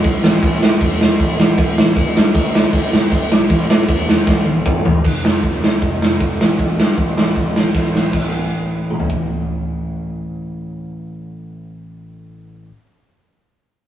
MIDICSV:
0, 0, Header, 1, 3, 480
1, 0, Start_track
1, 0, Tempo, 386349
1, 529, Time_signature, 4, 2, 24, 8
1, 17237, End_track
2, 0, Start_track
2, 0, Title_t, "Picked electric bass"
2, 0, Program_c, 0, 34
2, 56, Note_on_c, 0, 35, 98
2, 232, Note_off_c, 0, 35, 0
2, 274, Note_on_c, 0, 33, 104
2, 457, Note_off_c, 0, 33, 0
2, 531, Note_on_c, 0, 33, 110
2, 708, Note_off_c, 0, 33, 0
2, 752, Note_on_c, 0, 45, 96
2, 935, Note_off_c, 0, 45, 0
2, 1004, Note_on_c, 0, 28, 102
2, 1360, Note_off_c, 0, 28, 0
2, 1488, Note_on_c, 0, 33, 97
2, 1664, Note_off_c, 0, 33, 0
2, 1716, Note_on_c, 0, 33, 100
2, 1896, Note_off_c, 0, 33, 0
2, 1960, Note_on_c, 0, 33, 106
2, 2139, Note_off_c, 0, 33, 0
2, 2193, Note_on_c, 0, 33, 105
2, 2433, Note_on_c, 0, 31, 109
2, 2452, Note_off_c, 0, 33, 0
2, 2613, Note_off_c, 0, 31, 0
2, 2664, Note_on_c, 0, 43, 104
2, 2847, Note_off_c, 0, 43, 0
2, 2915, Note_on_c, 0, 38, 102
2, 3271, Note_off_c, 0, 38, 0
2, 3394, Note_on_c, 0, 31, 95
2, 3572, Note_off_c, 0, 31, 0
2, 3627, Note_on_c, 0, 31, 94
2, 3807, Note_off_c, 0, 31, 0
2, 3873, Note_on_c, 0, 31, 107
2, 4051, Note_off_c, 0, 31, 0
2, 4103, Note_on_c, 0, 35, 92
2, 4284, Note_off_c, 0, 35, 0
2, 4348, Note_on_c, 0, 33, 105
2, 4527, Note_off_c, 0, 33, 0
2, 4589, Note_on_c, 0, 45, 104
2, 4767, Note_off_c, 0, 45, 0
2, 4822, Note_on_c, 0, 28, 103
2, 5180, Note_off_c, 0, 28, 0
2, 5305, Note_on_c, 0, 33, 87
2, 5483, Note_off_c, 0, 33, 0
2, 5538, Note_on_c, 0, 33, 92
2, 5719, Note_off_c, 0, 33, 0
2, 5790, Note_on_c, 0, 33, 100
2, 5966, Note_off_c, 0, 33, 0
2, 6023, Note_on_c, 0, 33, 101
2, 6202, Note_off_c, 0, 33, 0
2, 6270, Note_on_c, 0, 29, 98
2, 6486, Note_off_c, 0, 29, 0
2, 6497, Note_on_c, 0, 29, 86
2, 6718, Note_off_c, 0, 29, 0
2, 6746, Note_on_c, 0, 29, 87
2, 6963, Note_off_c, 0, 29, 0
2, 6973, Note_on_c, 0, 38, 84
2, 7196, Note_off_c, 0, 38, 0
2, 7229, Note_on_c, 0, 29, 85
2, 7445, Note_off_c, 0, 29, 0
2, 7470, Note_on_c, 0, 29, 85
2, 7686, Note_off_c, 0, 29, 0
2, 7706, Note_on_c, 0, 29, 90
2, 7923, Note_off_c, 0, 29, 0
2, 7944, Note_on_c, 0, 33, 93
2, 8162, Note_off_c, 0, 33, 0
2, 8185, Note_on_c, 0, 33, 89
2, 8403, Note_off_c, 0, 33, 0
2, 8419, Note_on_c, 0, 43, 96
2, 8640, Note_off_c, 0, 43, 0
2, 8665, Note_on_c, 0, 33, 91
2, 8884, Note_off_c, 0, 33, 0
2, 8893, Note_on_c, 0, 33, 87
2, 9117, Note_off_c, 0, 33, 0
2, 9142, Note_on_c, 0, 33, 84
2, 9581, Note_off_c, 0, 33, 0
2, 9624, Note_on_c, 0, 33, 89
2, 10063, Note_off_c, 0, 33, 0
2, 10097, Note_on_c, 0, 33, 89
2, 15770, Note_off_c, 0, 33, 0
2, 17237, End_track
3, 0, Start_track
3, 0, Title_t, "Drums"
3, 54, Note_on_c, 9, 36, 122
3, 57, Note_on_c, 9, 49, 75
3, 178, Note_off_c, 9, 36, 0
3, 182, Note_off_c, 9, 49, 0
3, 300, Note_on_c, 9, 38, 121
3, 424, Note_off_c, 9, 38, 0
3, 526, Note_on_c, 9, 49, 69
3, 530, Note_on_c, 9, 36, 121
3, 651, Note_off_c, 9, 49, 0
3, 654, Note_off_c, 9, 36, 0
3, 778, Note_on_c, 9, 38, 124
3, 902, Note_off_c, 9, 38, 0
3, 1008, Note_on_c, 9, 36, 120
3, 1010, Note_on_c, 9, 49, 74
3, 1133, Note_off_c, 9, 36, 0
3, 1134, Note_off_c, 9, 49, 0
3, 1258, Note_on_c, 9, 38, 112
3, 1382, Note_off_c, 9, 38, 0
3, 1486, Note_on_c, 9, 36, 119
3, 1487, Note_on_c, 9, 49, 67
3, 1610, Note_off_c, 9, 36, 0
3, 1611, Note_off_c, 9, 49, 0
3, 1736, Note_on_c, 9, 38, 108
3, 1860, Note_off_c, 9, 38, 0
3, 1963, Note_on_c, 9, 36, 126
3, 1964, Note_on_c, 9, 49, 69
3, 2087, Note_off_c, 9, 36, 0
3, 2089, Note_off_c, 9, 49, 0
3, 2215, Note_on_c, 9, 38, 123
3, 2339, Note_off_c, 9, 38, 0
3, 2436, Note_on_c, 9, 49, 64
3, 2439, Note_on_c, 9, 36, 119
3, 2560, Note_off_c, 9, 49, 0
3, 2564, Note_off_c, 9, 36, 0
3, 2695, Note_on_c, 9, 38, 127
3, 2819, Note_off_c, 9, 38, 0
3, 2918, Note_on_c, 9, 36, 117
3, 2921, Note_on_c, 9, 49, 79
3, 3042, Note_off_c, 9, 36, 0
3, 3045, Note_off_c, 9, 49, 0
3, 3172, Note_on_c, 9, 38, 123
3, 3296, Note_off_c, 9, 38, 0
3, 3394, Note_on_c, 9, 36, 115
3, 3396, Note_on_c, 9, 49, 80
3, 3518, Note_off_c, 9, 36, 0
3, 3520, Note_off_c, 9, 49, 0
3, 3643, Note_on_c, 9, 38, 106
3, 3768, Note_off_c, 9, 38, 0
3, 3872, Note_on_c, 9, 36, 116
3, 3872, Note_on_c, 9, 49, 81
3, 3996, Note_off_c, 9, 36, 0
3, 3996, Note_off_c, 9, 49, 0
3, 4123, Note_on_c, 9, 38, 121
3, 4247, Note_off_c, 9, 38, 0
3, 4349, Note_on_c, 9, 36, 118
3, 4351, Note_on_c, 9, 49, 66
3, 4473, Note_off_c, 9, 36, 0
3, 4475, Note_off_c, 9, 49, 0
3, 4599, Note_on_c, 9, 38, 127
3, 4723, Note_off_c, 9, 38, 0
3, 4828, Note_on_c, 9, 36, 124
3, 4831, Note_on_c, 9, 49, 74
3, 4952, Note_off_c, 9, 36, 0
3, 4956, Note_off_c, 9, 49, 0
3, 5082, Note_on_c, 9, 38, 119
3, 5206, Note_off_c, 9, 38, 0
3, 5308, Note_on_c, 9, 36, 127
3, 5320, Note_on_c, 9, 38, 72
3, 5432, Note_off_c, 9, 36, 0
3, 5444, Note_off_c, 9, 38, 0
3, 5547, Note_on_c, 9, 48, 67
3, 5671, Note_off_c, 9, 48, 0
3, 5783, Note_on_c, 9, 45, 109
3, 5787, Note_on_c, 9, 36, 127
3, 5908, Note_off_c, 9, 45, 0
3, 5911, Note_off_c, 9, 36, 0
3, 6027, Note_on_c, 9, 43, 110
3, 6151, Note_off_c, 9, 43, 0
3, 6265, Note_on_c, 9, 57, 105
3, 6268, Note_on_c, 9, 36, 107
3, 6389, Note_off_c, 9, 57, 0
3, 6393, Note_off_c, 9, 36, 0
3, 6522, Note_on_c, 9, 38, 117
3, 6646, Note_off_c, 9, 38, 0
3, 6750, Note_on_c, 9, 36, 112
3, 6751, Note_on_c, 9, 46, 62
3, 6874, Note_off_c, 9, 36, 0
3, 6875, Note_off_c, 9, 46, 0
3, 7004, Note_on_c, 9, 38, 112
3, 7129, Note_off_c, 9, 38, 0
3, 7230, Note_on_c, 9, 36, 107
3, 7233, Note_on_c, 9, 46, 61
3, 7355, Note_off_c, 9, 36, 0
3, 7358, Note_off_c, 9, 46, 0
3, 7484, Note_on_c, 9, 38, 98
3, 7608, Note_off_c, 9, 38, 0
3, 7709, Note_on_c, 9, 36, 110
3, 7710, Note_on_c, 9, 46, 59
3, 7833, Note_off_c, 9, 36, 0
3, 7834, Note_off_c, 9, 46, 0
3, 7964, Note_on_c, 9, 38, 113
3, 8088, Note_off_c, 9, 38, 0
3, 8189, Note_on_c, 9, 46, 57
3, 8190, Note_on_c, 9, 36, 104
3, 8313, Note_off_c, 9, 46, 0
3, 8314, Note_off_c, 9, 36, 0
3, 8444, Note_on_c, 9, 38, 118
3, 8568, Note_off_c, 9, 38, 0
3, 8666, Note_on_c, 9, 46, 53
3, 8668, Note_on_c, 9, 36, 109
3, 8790, Note_off_c, 9, 46, 0
3, 8792, Note_off_c, 9, 36, 0
3, 8916, Note_on_c, 9, 38, 109
3, 9040, Note_off_c, 9, 38, 0
3, 9145, Note_on_c, 9, 46, 53
3, 9147, Note_on_c, 9, 36, 105
3, 9269, Note_off_c, 9, 46, 0
3, 9271, Note_off_c, 9, 36, 0
3, 9396, Note_on_c, 9, 38, 97
3, 9520, Note_off_c, 9, 38, 0
3, 9624, Note_on_c, 9, 36, 110
3, 9630, Note_on_c, 9, 38, 62
3, 9748, Note_off_c, 9, 36, 0
3, 9754, Note_off_c, 9, 38, 0
3, 9877, Note_on_c, 9, 38, 88
3, 10001, Note_off_c, 9, 38, 0
3, 10103, Note_on_c, 9, 57, 77
3, 10104, Note_on_c, 9, 36, 93
3, 10227, Note_off_c, 9, 57, 0
3, 10228, Note_off_c, 9, 36, 0
3, 11062, Note_on_c, 9, 47, 55
3, 11178, Note_on_c, 9, 43, 69
3, 11186, Note_off_c, 9, 47, 0
3, 11302, Note_off_c, 9, 43, 0
3, 11303, Note_on_c, 9, 36, 75
3, 11427, Note_off_c, 9, 36, 0
3, 17237, End_track
0, 0, End_of_file